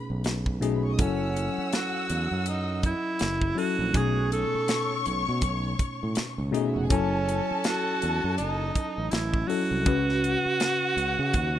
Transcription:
Already playing: tine electric piano B2 A3 C#4 D#4 G#4, string section B4 B5
0.10 fingered electric bass B1
0.24 snare, closed hi-hat
0.46 kick
0.61 tine electric piano B2 A3 C#4 D#4 G#4, string section A4 A5, closed hi-hat
0.74 string section B4 B5
0.84 string section C#5 C#6
0.91 string section D#5 D#6
0.97 fingered electric bass F#1, tine electric piano F#3 C#4 E4 A4, string section F#5 E6, kick, closed hi-hat
1.01 tenor saxophone C#4
1.36 closed hi-hat
1.58 muted fingered electric bass stroke
1.73 tenor saxophone F#4, snare, closed hi-hat
2.10 fingered electric bass E2, closed hi-hat
2.31 fingered electric bass F#2
2.46 tenor saxophone D#4, closed hi-hat
2.83 tenor saxophone E4, kick, closed hi-hat
3.19 fingered electric bass F#1, snare, closed hi-hat
3.42 kick
3.55 tine electric piano F#3 C#4 E4 A4, tenor saxophone F#4, open hi-hat
3.79 fingered electric bass A#1
3.92 fingered electric bass B1, tine electric piano B2 A3 C#4 D#4 G#5, string section C#5 C#6, kick, closed hi-hat
3.97 tenor saxophone G#4
4.32 tenor saxophone A4, closed hi-hat
4.55 muted fingered electric bass stroke
4.68 snare, closed hi-hat
5.06 fingered electric bass B1, closed hi-hat
5.29 fingered electric bass B2
5.41 fingered electric bass B1, kick, closed hi-hat
5.79 kick, closed hi-hat
6.03 fingered electric bass A2
6.15 muted fingered electric bass stroke, snare, closed hi-hat
6.38 fingered electric bass C#2
6.51 tine electric piano B2 A3 C#4 D#4 G#4, string section D#4 D#5, closed hi-hat
6.65 string section E4 E5
6.75 fingered electric bass F1, string section F#4 F#5
6.83 string section G#4 G#5
6.89 fingered electric bass F#1, tine electric piano F#3 C#4 E4 A4, tenor saxophone C#4, string section A4 A5, kick, closed hi-hat
7.29 closed hi-hat
7.51 muted fingered electric bass stroke
7.64 tenor saxophone F#4, snare, closed hi-hat
8.02 fingered electric bass E2, closed hi-hat
8.24 fingered electric bass F#2
8.38 fingered electric bass F#1, tenor saxophone D#4, closed hi-hat
8.76 kick, closed hi-hat
8.98 fingered electric bass A1
9.11 fingered electric bass A1, tenor saxophone E4, snare, closed hi-hat
9.34 kick
9.47 tine electric piano F#3 C#4 E4 A4, tenor saxophone F#4, open hi-hat
9.71 fingered electric bass C2
9.85 fingered electric bass C#2, tine electric piano C#3 C#4 F#4 B4, string section F#4 F#5, kick, closed hi-hat
10.09 snare
10.24 closed hi-hat
10.46 muted fingered electric bass stroke
10.60 snare, closed hi-hat
10.97 fingered electric bass C#2, closed hi-hat
11.19 fingered electric bass C#3
11.33 fingered electric bass D#2, kick, closed hi-hat

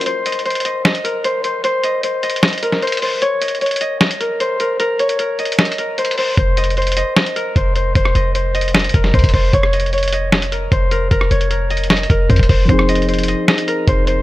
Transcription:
Already playing: harp A#4 D#5
0.01 closed hi-hat
0.06 harp C5, closed hi-hat
0.26 harp D#5, closed hi-hat
0.32 closed hi-hat
0.39 closed hi-hat
0.45 harp C5, closed hi-hat
0.50 closed hi-hat
0.55 closed hi-hat
0.60 closed hi-hat
0.65 harp D#5, closed hi-hat
0.85 harp D#5, snare, closed hi-hat
0.95 closed hi-hat
1.04 harp A#4, closed hi-hat
1.24 harp C5, closed hi-hat
1.44 harp C5, closed hi-hat
1.64 harp C5, closed hi-hat
1.84 harp D#5, closed hi-hat
2.03 harp C5, closed hi-hat
2.23 harp D#5, closed hi-hat
2.30 closed hi-hat
2.36 closed hi-hat
2.43 harp D#5, snare, closed hi-hat
2.48 closed hi-hat
2.53 closed hi-hat
2.58 closed hi-hat
2.63 harp A#4, closed hi-hat
2.72 snare
2.82 harp C5, closed hi-hat
2.87 closed hi-hat
2.92 closed hi-hat
2.97 closed hi-hat
3.02 harp C5, open hi-hat
3.22 harp C#5, closed hi-hat
3.41 harp D#5, closed hi-hat
3.48 closed hi-hat
3.55 closed hi-hat
3.61 harp C#5, closed hi-hat
3.66 closed hi-hat
3.71 closed hi-hat
3.76 closed hi-hat
3.81 harp D#5, closed hi-hat
4.01 harp D#5, snare, closed hi-hat
4.11 closed hi-hat
4.20 harp A#4, closed hi-hat
4.40 harp C5, closed hi-hat
4.60 harp A#4, closed hi-hat
4.80 harp A#4, closed hi-hat
4.99 harp C#5, closed hi-hat
5.09 closed hi-hat
5.19 harp A#4, closed hi-hat
5.39 harp D#5, closed hi-hat
5.45 closed hi-hat
5.52 closed hi-hat
5.59 harp D#5, snare, closed hi-hat
5.65 closed hi-hat
5.72 closed hi-hat
5.78 harp A#4, closed hi-hat
5.98 harp C5, closed hi-hat
6.05 closed hi-hat
6.11 closed hi-hat
6.18 harp C5, open hi-hat
6.37 808-style bass F1, harp C5, kick, closed hi-hat
6.57 harp D#5, closed hi-hat
6.64 closed hi-hat
6.70 closed hi-hat
6.77 harp C5, closed hi-hat
6.82 closed hi-hat
6.87 closed hi-hat
6.92 closed hi-hat
6.97 harp D#5, closed hi-hat
7.16 harp D#5, snare, closed hi-hat
7.26 closed hi-hat
7.36 harp A#4, closed hi-hat
7.56 808-style bass F1, harp C5, kick, closed hi-hat
7.76 harp C5, closed hi-hat
7.95 808-style bass F1, harp C5, kick, closed hi-hat
8.05 cross-stick
8.15 808-style bass F1, harp D#5, closed hi-hat
8.35 harp C5, closed hi-hat
8.54 harp D#5, closed hi-hat
8.61 closed hi-hat
8.68 closed hi-hat
8.74 harp D#5, snare, closed hi-hat
8.79 closed hi-hat
8.84 closed hi-hat
8.89 closed hi-hat
8.94 808-style bass F1, harp A#4, kick, closed hi-hat
9.04 snare
9.14 808-style bass C2, harp C5, kick, closed hi-hat
9.19 closed hi-hat
9.24 808-style bass F1, kick, closed hi-hat
9.29 closed hi-hat
9.34 808-style bass F1, harp C5, kick, open hi-hat
9.53 808-style bass F1, harp C#5, kick, closed hi-hat
9.63 cross-stick
9.73 harp D#5, closed hi-hat
9.80 closed hi-hat
9.86 closed hi-hat
9.93 harp C#5, closed hi-hat
9.98 closed hi-hat
10.03 closed hi-hat
10.08 closed hi-hat
10.13 harp D#5, closed hi-hat
10.32 harp D#5, snare, closed hi-hat
10.42 closed hi-hat
10.52 harp A#4, closed hi-hat
10.72 808-style bass F1, harp C5, kick, closed hi-hat
10.91 harp A#4, closed hi-hat
11.11 808-style bass F1, harp A#4, kick, closed hi-hat
11.21 cross-stick
11.31 808-style bass F1, harp C#5, closed hi-hat
11.41 closed hi-hat
11.51 harp A#4, closed hi-hat
11.70 harp D#5, closed hi-hat
11.77 closed hi-hat
11.84 closed hi-hat
11.90 harp D#5, cross-stick, snare, closed hi-hat
11.97 closed hi-hat
12.03 closed hi-hat
12.10 808-style bass F1, harp A#4, kick, closed hi-hat
12.29 808-style bass F2, harp C5, kick, closed hi-hat
12.36 808-style bass D#1, kick, closed hi-hat
12.43 closed hi-hat
12.49 808-style bass F1, harp C5, kick, open hi-hat
12.65 808-style bass F1, synth keys F3 C4, harp C5, kick, closed hi-hat
12.71 synth keys D#4 G#4
12.79 cross-stick
12.89 harp D#5, closed hi-hat
12.95 closed hi-hat
13.02 closed hi-hat
13.09 harp C5, closed hi-hat
13.14 closed hi-hat
13.19 closed hi-hat
13.23 closed hi-hat
13.28 harp D#5, closed hi-hat
13.48 harp D#5, snare, closed hi-hat
13.58 closed hi-hat
13.68 harp A#4, closed hi-hat
13.88 808-style bass F1, harp C5, kick, closed hi-hat
14.07 harp C5, closed hi-hat

